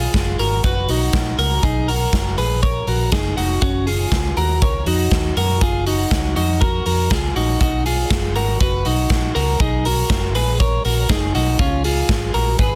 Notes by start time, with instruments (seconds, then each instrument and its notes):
Already playing: clean electric guitar F4 G#4
0.14 fingered electric bass F#1, kick, snare, closed hi-hat
0.39 fingered electric bass G#1, clean electric guitar F#4 A#4, open hi-hat
0.64 clean electric guitar F#4 B4, kick, closed hi-hat
0.89 fingered electric bass B1, clean electric guitar D#4 F#4, open hi-hat
1.13 kick, snare, closed hi-hat
1.38 fingered electric bass C#2, clean electric guitar F#4 A#4, open hi-hat
1.63 fingered electric bass B1, clean electric guitar D#4 G#4, kick, closed hi-hat
1.88 clean electric guitar F#4 A#4, open hi-hat
2.13 fingered electric bass F#1, kick, snare
2.37 fingered electric bass A#1, clean electric guitar G#4 B4, open hi-hat
2.63 clean electric guitar A#4 C#5, kick, closed hi-hat
2.87 fingered electric bass A#1, clean electric guitar F#4 A#4, open hi-hat
3.12 fingered electric bass F#1, clean electric guitar D#4 G#4, kick, snare, closed hi-hat
3.37 fingered electric bass F1, clean electric guitar D#4 F#4, open hi-hat
3.62 fingered electric bass F#1, clean electric guitar C#4 F#4, kick, closed hi-hat
3.87 clean electric guitar F4 G#4, open hi-hat
4.12 fingered electric bass C#2, kick, snare, closed hi-hat
4.37 fingered electric bass D#2, clean electric guitar F#4 A#4, open hi-hat
4.62 fingered electric bass C#2, clean electric guitar A#4 C#5, kick, closed hi-hat
4.86 fingered electric bass F2, clean electric guitar D#4 F#4, open hi-hat
5.11 fingered electric bass D#2, kick, snare, closed hi-hat
5.37 fingered electric bass F#2, clean electric guitar F#4 A#4, open hi-hat
5.61 fingered electric bass F#1, clean electric guitar F4 G#4, kick, closed hi-hat
5.86 clean electric guitar D#4 F#4, open hi-hat
6.11 fingered electric bass C#2, kick, snare, closed hi-hat
6.36 fingered electric bass F2, clean electric guitar D#4 F#4, open hi-hat
6.61 clean electric guitar F#4 A#4, kick, closed hi-hat
6.86 fingered electric bass F2, clean electric guitar F#4 A#4, open hi-hat
7.10 fingered electric bass C#2, clean electric guitar F4 G#4, kick, snare, closed hi-hat
7.36 fingered electric bass A#1, clean electric guitar D#4 F#4, open hi-hat
7.61 fingered electric bass B1, clean electric guitar D#4 F#4, kick, closed hi-hat
7.86 clean electric guitar F4 G#4, open hi-hat
8.11 fingered electric bass F#1, kick, snare, closed hi-hat
8.35 fingered electric bass G#1, clean electric guitar F#4 A#4, open hi-hat
8.60 fingered electric bass F#1, clean electric guitar F#4 B4, kick, closed hi-hat
8.85 fingered electric bass B1, clean electric guitar D#4 F#4, open hi-hat
9.10 kick, snare, closed hi-hat
9.35 fingered electric bass C#2, clean electric guitar F#4 A#4, open hi-hat
9.60 fingered electric bass B1, clean electric guitar D#4 G#4, kick, closed hi-hat
9.85 clean electric guitar F#4 A#4, open hi-hat
10.10 fingered electric bass F#1, kick, snare, closed hi-hat
10.35 fingered electric bass A#1, clean electric guitar G#4 B4, open hi-hat
10.60 clean electric guitar A#4 C#5, kick, closed hi-hat
10.85 fingered electric bass A#1, clean electric guitar F#4 A#4, open hi-hat
11.09 clean electric guitar D#4 G#4, kick, snare, closed hi-hat
11.35 fingered electric bass B1, clean electric guitar D#4 F#4, open hi-hat
11.59 fingered electric bass C#2, clean electric guitar C#4 F4, kick, closed hi-hat
11.84 clean electric guitar F4 G#4, open hi-hat
12.09 fingered electric bass G#1, kick, snare, closed hi-hat
12.34 fingered electric bass A#1, clean electric guitar F#4 A#4, open hi-hat
12.59 fingered electric bass G#1, clean electric guitar G#4 B4, kick, closed hi-hat